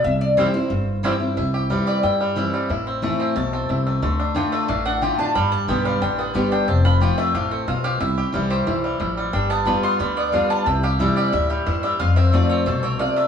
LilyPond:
<<
  \new Staff \with { instrumentName = "Mandolin" } { \time 4/4 \key c \major \tempo 4 = 181 r4 <c' e' c'' g''>8 r4. <c' e' c'' g''>8 r8 | r4. d''8 g''4 r4 | r4. e''8 a''4 r4 | r4 g''8 e''8 f''8 fis''8 g''8 a''8 |
b''8 a''8 g''8 f''8 g''8 b'8 d''8 g''8 | a''8 b''8 g''8 e''8 f''8 a'8 c''8 f''8 | e''4. c''4. r4 | g''8 a''8 b''8 c'''8 b''8 d''8 f''8 a''8 |
g''8 f''8 e''8 d''8 e''8 g'8 c''8 e''8 | f''8 e''8 d''8 des''8 c''8 des''8 d''8 e''8 | }
  \new Staff \with { instrumentName = "Resonator guitar played with a steel bar" } { \time 4/4 \key c \major e''8 d''8 c''8 c''4. r4 | r1 | r1 | r1 |
r1 | r1 | r1 | r1 |
r1 | r1 | }
  \new Staff \with { instrumentName = "Five-string banjo" } { \time 4/4 \key c \major r4 <g c' e'>8 r4. <g c' e'>8 r8 | e'8 g'8 g8 g'8 e'8 g8 e'8 g8 | e'8 c'8 a8 c'8 a8 c'8 e'8 a8 | a8 d'8 d'8 a8 d'8 d'8 g'8 d'8 |
g4 b8 g8 d'8 b8 g'8 d'8 | c'8 f'8 g'8 a8 g'8 c'8 f'8 g'8 | e'8 g'8 g8 g'8 e'8 g8 e'8 g8 | d'8 b8 g8 b8 g8 b8 d'8 g8 |
e'8 g'8 g8 g'8 e'8 g8 e'8 g8 | f'8 c'8 a8 c'8 a8 c'8 f'8 a8 | }
  \new Staff \with { instrumentName = "Steel-string acoustic guitar" } { \clef bass \time 4/4 \key c \major << { r4 <e g c' e'>8 <c' e'>8 r4 <e g c' e'>8 <c' e'>8 | r4 <e g c' e'>4 r4 <e g c' e'>4 | r4 <e a c' e'>4 r2 | r4 <d a d' f'>4 r4 <d a d' f'>8 <d' f'>8 |
r4 <d g b g'>4 r4 <d g b g'>4 | r4 <f a c' f'>4 r2 | r4 <e g c' e'>4 r2 | r4 <g b f'>4 r4 <g b f'>4 |
r4 <e g c' e'>4 r2 | r4 <f a c' f'>4 r2 | } \\ { c2 g,2 | c2 g,2 | a,2 b,4 c4 | d2 a,2 |
g,2 d2 | f,2 a,4 b,4 | c2 e4 f4 | g2 d2 |
c2 a,4 g,4 | f,2 b,4 c4 | } >> }
  \new Staff \with { instrumentName = "Upright bass" } { \clef bass \time 4/4 \key c \major c,2 g,,2 | c,2 g,2 | a,,2 b,,4 c,4 | d,2 a,,2 |
g,,4 b,,4 a,,4 g,,4 | f,,2 a,,4 b,,4 | c,4 c,4 b,,4 a,,4 | g,,2 d,2 |
c,2 d,4 e,4 | f,2 c,2 | }
>>